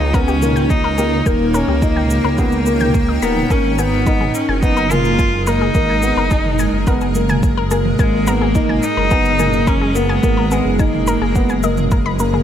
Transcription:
Already playing: cello D#4, ambient pad D#4 F4 A#4 C#5
0.00 detuned saw bass C#2
0.14 felt piano B3, cello C#4, synth arpeggio sound A#4, kick, shaker
0.28 synth arpeggio sound G4, shaker
0.42 felt piano A#3, ambient pad G5, mid tom, shaker
0.56 synth arpeggio sound G5, shaker
0.70 cello D#4, kick, shaker
0.84 synth arpeggio sound A#4
0.98 felt piano A#3, synth arpeggio sound G4, shaker
1.26 detuned saw bass D#1, felt piano A#3, cello A#3, synth arpeggio sound G5, kick, shaker
1.54 felt piano C#4, synth arpeggio sound A#4, shaker
1.68 detuned saw bass C#2, synth arpeggio sound G4
1.82 felt piano D#4, kick, shaker
1.96 synth arpeggio sound G5, mid tom
2.10 shaker
2.25 detuned saw bass C#2, synth arpeggio sound A#4
2.38 detuned saw bass C#2, felt piano B3, synth arpeggio sound G4, kick, shaker
2.52 shaker
2.66 felt piano A#3, shaker
2.80 synth arpeggio sound G5, mid tom, shaker
2.94 kick, shaker
3.08 synth arpeggio sound D#5
3.22 detuned saw bass D#1, felt piano A#3, cello B3, synth arpeggio sound A#5, shaker
3.36 mid tom
3.50 detuned saw bass G#1, ambient pad G#3, felt piano A#3, cello C#4, synth arpeggio sound G#4, kick, shaker
3.59 ambient pad G#4
3.78 cello B3, felt piano B3, synth arpeggio sound G#5, shaker
4.06 felt piano D#4, synth arpeggio sound A#4, kick, shaker
4.21 synth arpeggio sound G#4, mid tom
4.35 cello C#4, shaker
4.49 detuned saw bass F#1, synth arpeggio sound G#5
4.63 felt piano B3, cello D#4, kick, shaker
4.77 synth arpeggio sound A#4, shaker
4.91 felt piano A#3, cello F4, synth arpeggio sound G#4, mid tom, shaker
5.05 shaker
5.19 synth arpeggio sound G#5, kick, shaker
5.47 felt piano A#3, cello D#4, synth arpeggio sound A#4, shaker
5.61 synth arpeggio sound G#4
5.75 detuned saw bass G#1, felt piano A#3, kick, shaker
5.89 synth arpeggio sound G#5
6.02 felt piano B3, shaker
6.17 detuned saw bass F#1, synth arpeggio sound A#4
6.31 felt piano D#4, synth arpeggio sound G#4, kick, shaker
6.45 mid tom
6.59 synth arpeggio sound G#5, shaker
6.73 detuned saw bass F#1
6.87 felt piano B3, synth arpeggio sound A#4, kick, shaker
7.01 synth arpeggio sound G#4, shaker
7.15 felt piano A#3, shaker
7.29 synth arpeggio sound G#5, mid tom, shaker
7.43 kick, shaker
7.57 synth arpeggio sound A#4
7.71 felt piano A#3, synth arpeggio sound G#4, shaker
7.85 mid tom
7.99 detuned saw bass G#1, cello G#3, felt piano A#3, synth arpeggio sound G#5, kick, shaker
8.27 cello A#3, felt piano B3, synth arpeggio sound A#4, shaker
8.41 synth arpeggio sound G#4
8.55 felt piano D#4, kick, shaker
8.69 synth arpeggio sound G#5, mid tom
8.83 cello D#4, shaker
8.97 detuned saw bass F#1, synth arpeggio sound A#4
9.11 felt piano B3, synth arpeggio sound G#4, kick, shaker
9.25 shaker
9.39 felt piano A#3, synth arpeggio sound G#5, mid tom, shaker
9.53 shaker
9.67 cello C#4, synth arpeggio sound A#4, kick, shaker
9.81 synth arpeggio sound G#4
9.95 felt piano A#3, cello B3, shaker
10.09 synth arpeggio sound G#5
10.23 detuned saw bass G#1, felt piano A#3, kick, shaker
10.37 synth arpeggio sound A#4
10.51 cello G#3, felt piano B3, synth arpeggio sound G#4, shaker
10.65 detuned saw bass F#1
10.79 cello A#3, felt piano D#4, synth arpeggio sound G#5, kick, shaker
10.93 mid tom
11.07 synth arpeggio sound A#4, shaker
11.22 detuned saw bass F#1, synth arpeggio sound G#4
11.35 felt piano B3, kick, shaker
11.49 synth arpeggio sound G#5, shaker
11.63 felt piano A#3, synth arpeggio sound D#5, shaker
11.77 mid tom, shaker
11.91 synth arpeggio sound A#4, kick, shaker
12.06 synth arpeggio sound B5
12.19 felt piano A#3, synth arpeggio sound A#4, shaker
12.33 synth arpeggio sound G#4, mid tom

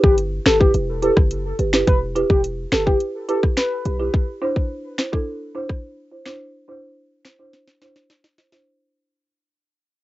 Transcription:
0.03 808-style bass G1, soft synth lead G4, kick
0.18 closed hi-hat
0.45 808-style bass G1, marimba G4 B4, soft synth lead A4, finger snap, snare, closed hi-hat
0.60 marimba E4 G4 B4, soft synth lead G4, kick
0.74 808-style bass E1, closed hi-hat
1.02 marimba E4 G4 B4, soft synth lead A4, closed hi-hat
1.17 808-style bass F#1, kick, cross-stick
1.31 closed hi-hat
1.59 808-style bass G1, marimba G4 B4, closed hi-hat
1.73 marimba E4 G4 B4, finger snap, snare
1.87 808-style bass E1, soft synth lead B4, kick, closed hi-hat
2.15 marimba E4 G4 B4, closed hi-hat
2.30 808-style bass E1, soft synth lead G4, kick
2.44 closed hi-hat
2.72 808-style bass F#1, marimba G4 B4, soft synth lead A4, finger snap, snare, closed hi-hat
2.86 marimba E4 G4 B4, soft synth lead G4, kick
3.00 closed hi-hat
3.29 marimba E4 G4 B4, soft synth lead A4, closed hi-hat
3.43 kick, cross-stick
3.57 soft synth lead B4, finger snap, snare, closed hi-hat
3.85 808-style bass B1, marimba G4 B4, closed hi-hat
3.99 marimba E4 G4 B4
4.14 kick
4.42 marimba D4 E4 C5
4.56 kick
4.98 marimba E4 C5, finger snap, snare
5.13 marimba D4 E4 A4, kick
5.55 marimba D4 E4 C5
5.70 kick, cross-stick
6.12 marimba E4 C5
6.26 marimba D4 E4 C5, finger snap, snare
6.68 marimba D4 E4 C5
7.25 marimba E4 C5, finger snap, snare
7.39 marimba D4 E4 C5
7.53 snare
7.68 snare
7.82 marimba D4 E4 C5, snare
7.96 snare
8.10 snare
8.24 snare
8.38 marimba E4 C5, snare
8.52 marimba D4 E4 C5, snare

